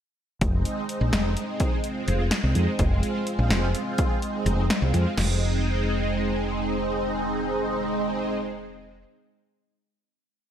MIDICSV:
0, 0, Header, 1, 4, 480
1, 0, Start_track
1, 0, Key_signature, -4, "minor"
1, 0, Tempo, 478088
1, 417, Time_signature, 5, 3, 24, 8
1, 10542, End_track
2, 0, Start_track
2, 0, Title_t, "Analog synth pad"
2, 0, Program_c, 0, 89
2, 416, Note_on_c, 0, 56, 90
2, 416, Note_on_c, 0, 60, 78
2, 418, Note_on_c, 0, 63, 89
2, 804, Note_off_c, 0, 56, 0
2, 804, Note_off_c, 0, 60, 0
2, 804, Note_off_c, 0, 63, 0
2, 889, Note_on_c, 0, 56, 83
2, 890, Note_on_c, 0, 60, 77
2, 894, Note_on_c, 0, 63, 96
2, 1278, Note_off_c, 0, 56, 0
2, 1279, Note_off_c, 0, 60, 0
2, 1281, Note_off_c, 0, 63, 0
2, 1369, Note_on_c, 0, 56, 73
2, 1370, Note_on_c, 0, 63, 80
2, 1372, Note_on_c, 0, 60, 71
2, 1757, Note_off_c, 0, 56, 0
2, 1758, Note_off_c, 0, 63, 0
2, 1759, Note_off_c, 0, 60, 0
2, 1848, Note_on_c, 0, 56, 83
2, 1849, Note_on_c, 0, 65, 91
2, 1850, Note_on_c, 0, 60, 83
2, 2235, Note_off_c, 0, 56, 0
2, 2236, Note_off_c, 0, 65, 0
2, 2237, Note_off_c, 0, 60, 0
2, 2326, Note_on_c, 0, 63, 95
2, 2327, Note_on_c, 0, 56, 91
2, 2328, Note_on_c, 0, 60, 74
2, 2714, Note_off_c, 0, 56, 0
2, 2714, Note_off_c, 0, 63, 0
2, 2715, Note_off_c, 0, 60, 0
2, 2806, Note_on_c, 0, 60, 78
2, 2807, Note_on_c, 0, 56, 86
2, 2809, Note_on_c, 0, 65, 96
2, 3193, Note_off_c, 0, 60, 0
2, 3194, Note_off_c, 0, 56, 0
2, 3195, Note_off_c, 0, 65, 0
2, 3283, Note_on_c, 0, 56, 83
2, 3287, Note_on_c, 0, 65, 91
2, 3288, Note_on_c, 0, 60, 77
2, 3671, Note_off_c, 0, 56, 0
2, 3673, Note_off_c, 0, 65, 0
2, 3674, Note_off_c, 0, 60, 0
2, 3762, Note_on_c, 0, 56, 78
2, 3764, Note_on_c, 0, 60, 77
2, 3764, Note_on_c, 0, 65, 81
2, 4150, Note_off_c, 0, 56, 0
2, 4152, Note_off_c, 0, 60, 0
2, 4152, Note_off_c, 0, 65, 0
2, 4244, Note_on_c, 0, 56, 88
2, 4246, Note_on_c, 0, 60, 81
2, 4247, Note_on_c, 0, 63, 96
2, 4631, Note_off_c, 0, 56, 0
2, 4633, Note_off_c, 0, 60, 0
2, 4633, Note_off_c, 0, 63, 0
2, 4715, Note_on_c, 0, 56, 87
2, 4717, Note_on_c, 0, 65, 100
2, 4719, Note_on_c, 0, 60, 74
2, 5107, Note_off_c, 0, 56, 0
2, 5109, Note_off_c, 0, 60, 0
2, 5109, Note_off_c, 0, 65, 0
2, 5201, Note_on_c, 0, 60, 73
2, 5204, Note_on_c, 0, 56, 75
2, 5204, Note_on_c, 0, 63, 85
2, 8370, Note_off_c, 0, 60, 0
2, 8372, Note_off_c, 0, 56, 0
2, 8372, Note_off_c, 0, 63, 0
2, 10542, End_track
3, 0, Start_track
3, 0, Title_t, "Fretless electric bass"
3, 0, Program_c, 1, 35
3, 415, Note_on_c, 1, 29, 93
3, 636, Note_off_c, 1, 29, 0
3, 1013, Note_on_c, 1, 34, 71
3, 1123, Note_off_c, 1, 34, 0
3, 1128, Note_on_c, 1, 29, 88
3, 1351, Note_off_c, 1, 29, 0
3, 2088, Note_on_c, 1, 29, 90
3, 2308, Note_off_c, 1, 29, 0
3, 2445, Note_on_c, 1, 36, 78
3, 2555, Note_off_c, 1, 36, 0
3, 2562, Note_on_c, 1, 41, 79
3, 2674, Note_off_c, 1, 41, 0
3, 2806, Note_on_c, 1, 29, 89
3, 3026, Note_off_c, 1, 29, 0
3, 3400, Note_on_c, 1, 34, 77
3, 3511, Note_off_c, 1, 34, 0
3, 3519, Note_on_c, 1, 29, 97
3, 3742, Note_off_c, 1, 29, 0
3, 4476, Note_on_c, 1, 29, 93
3, 4700, Note_off_c, 1, 29, 0
3, 4838, Note_on_c, 1, 36, 86
3, 4950, Note_off_c, 1, 36, 0
3, 4956, Note_on_c, 1, 41, 84
3, 5069, Note_off_c, 1, 41, 0
3, 5196, Note_on_c, 1, 29, 84
3, 9070, Note_off_c, 1, 29, 0
3, 10542, End_track
4, 0, Start_track
4, 0, Title_t, "Drums"
4, 415, Note_on_c, 9, 42, 67
4, 416, Note_on_c, 9, 36, 94
4, 516, Note_off_c, 9, 42, 0
4, 517, Note_off_c, 9, 36, 0
4, 656, Note_on_c, 9, 42, 57
4, 756, Note_off_c, 9, 42, 0
4, 895, Note_on_c, 9, 42, 59
4, 995, Note_off_c, 9, 42, 0
4, 1133, Note_on_c, 9, 38, 97
4, 1133, Note_on_c, 9, 42, 75
4, 1233, Note_off_c, 9, 38, 0
4, 1233, Note_off_c, 9, 42, 0
4, 1372, Note_on_c, 9, 42, 60
4, 1473, Note_off_c, 9, 42, 0
4, 1604, Note_on_c, 9, 42, 71
4, 1609, Note_on_c, 9, 36, 90
4, 1705, Note_off_c, 9, 42, 0
4, 1709, Note_off_c, 9, 36, 0
4, 1845, Note_on_c, 9, 42, 58
4, 1945, Note_off_c, 9, 42, 0
4, 2085, Note_on_c, 9, 42, 57
4, 2186, Note_off_c, 9, 42, 0
4, 2320, Note_on_c, 9, 38, 99
4, 2320, Note_on_c, 9, 42, 72
4, 2420, Note_off_c, 9, 38, 0
4, 2420, Note_off_c, 9, 42, 0
4, 2562, Note_on_c, 9, 42, 53
4, 2663, Note_off_c, 9, 42, 0
4, 2801, Note_on_c, 9, 42, 77
4, 2804, Note_on_c, 9, 36, 93
4, 2901, Note_off_c, 9, 42, 0
4, 2904, Note_off_c, 9, 36, 0
4, 3042, Note_on_c, 9, 42, 53
4, 3142, Note_off_c, 9, 42, 0
4, 3280, Note_on_c, 9, 42, 59
4, 3381, Note_off_c, 9, 42, 0
4, 3519, Note_on_c, 9, 38, 91
4, 3519, Note_on_c, 9, 42, 65
4, 3619, Note_off_c, 9, 38, 0
4, 3619, Note_off_c, 9, 42, 0
4, 3761, Note_on_c, 9, 42, 53
4, 3861, Note_off_c, 9, 42, 0
4, 3998, Note_on_c, 9, 42, 66
4, 4002, Note_on_c, 9, 36, 94
4, 4099, Note_off_c, 9, 42, 0
4, 4102, Note_off_c, 9, 36, 0
4, 4240, Note_on_c, 9, 42, 54
4, 4341, Note_off_c, 9, 42, 0
4, 4480, Note_on_c, 9, 42, 63
4, 4580, Note_off_c, 9, 42, 0
4, 4720, Note_on_c, 9, 38, 101
4, 4720, Note_on_c, 9, 42, 78
4, 4820, Note_off_c, 9, 38, 0
4, 4820, Note_off_c, 9, 42, 0
4, 4960, Note_on_c, 9, 42, 58
4, 5060, Note_off_c, 9, 42, 0
4, 5196, Note_on_c, 9, 38, 78
4, 5196, Note_on_c, 9, 49, 78
4, 5296, Note_off_c, 9, 38, 0
4, 5296, Note_off_c, 9, 49, 0
4, 10542, End_track
0, 0, End_of_file